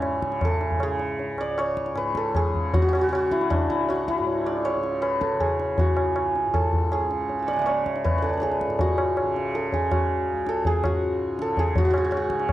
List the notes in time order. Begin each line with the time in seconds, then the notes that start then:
Already playing: C#2 G#2 C#3 C#4 E4 F#4
0.02 tabla na
0.22 C#3, tabla ke
0.32 tabla te
0.41 A4, tabla na, tabla ge
0.61 tabla te
0.71 tabla ge
0.78 C#3, tabla na
0.83 G#4
0.99 tabla te
1.19 tabla tin
1.36 C#2, tabla na
1.41 D5
1.58 C#5, tabla na
1.77 tabla ke
1.86 tabla te
1.93 G#2, tabla na
1.97 B4
2.15 A4, tabla ke
2.35 G#4, tabla na, tabla ge
2.49 C#3
2.55 tabla ge
2.74 F#4, tabla tin, tabla ge
2.82 F#4
2.89 F#4
2.93 F#4, tabla na
3.01 F#4
3.07 C#3 F#4
3.13 F#4, tabla na
3.31 E4, tabla ke
3.41 tabla te
3.50 D4, tabla na, tabla ge
3.63 C#2
3.69 E4, tabla ge
3.89 F#4, tabla na
4.08 E4, tabla ke
4.18 G#2, tabla te
4.27 tabla tin
4.46 D5, tabla na
4.65 C#5, tabla na
4.76 C#3
4.83 tabla te
5.02 B4, tabla na
5.21 A4, tabla ke
5.33 C#3
5.40 G#4, tabla na, tabla ge
5.60 tabla te
5.78 F#4, tabla tin, tabla ge
5.89 C#2
5.97 tabla na
6.16 tabla na
6.36 tabla te
6.45 G#2
6.54 A4, tabla na, tabla ge
6.73 tabla ge
6.92 G#4, tabla na
7.00 C#3
7.11 tabla te
7.29 tabla tin
7.39 D6 E6
7.47 D5 B5 C#6, tabla na
7.51 G#5 A5
7.56 C#3 E5 F#5
7.62 D5
7.66 C#5, tabla na
7.86 tabla ke
7.96 tabla te
8.04 B4, tabla na, tabla ge
8.11 C#2
8.18 B4
8.22 A4 E5 F#5, tabla te
8.29 D5
8.33 C#5
8.37 A4 B4
8.42 G#4, tabla te
8.52 tabla te
8.61 tabla ke
8.67 G#2, tabla te
8.79 F#4, tabla tin, tabla ge
8.98 tabla na
9.17 tabla na
9.22 C#3
9.36 tabla te
9.55 A4, tabla te
9.72 G#4, tabla tin, tabla ge
9.78 C#3
9.91 F#4, tabla na, tabla ge
10.33 C#2
10.47 A4, tabla te
10.65 G#4, tabla tin, tabla ge
10.84 F#4, tabla na, tabla ge
10.88 G#2
11.39 C#3 A4, tabla te
11.57 G#4, tabla tin, tabla ge
11.76 G#2 F#4, tabla tin, tabla ge
11.85 F#4
11.91 F#4, tabla na
11.98 F#4
12.04 F#4
12.11 F#4, tabla na
12.17 F#4
12.30 C#3, tabla ke
12.40 tabla te
12.49 tabla na, tabla ge